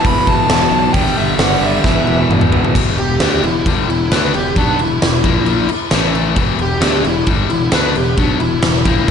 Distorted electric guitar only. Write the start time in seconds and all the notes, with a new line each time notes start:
Already playing: E2 B2 E3 B3
0.94 G2 D3
0.98 G3
1.83 E2 B2
1.87 E3
2.75 E2 B2 E3
2.99 E2 B2
3.21 D3 A3 D4
3.45 E2 B2
3.67 G2 D3 G3
3.89 E2 B2
4.12 D3 A3 D4
4.34 E2 B2
4.57 B2 F#3 B3
4.80 E2 B2
5.03 E2 B2
5.24 A#2 F3 A#3
5.70 muted distorted electric guitar stroke
5.91 A2 E3 A3
6.36 E2 B2 E3
6.59 E2 B2
6.80 D3 A3 D4
7.05 E2 B2
7.27 G2 D3 G3
7.50 E2 B2
7.72 D3 A3 D4
7.95 E2 B2
8.18 B2 F#3 B3
8.40 E2 B2
8.64 E2 B2
8.85 A#2 F3 A#3
9.07 B2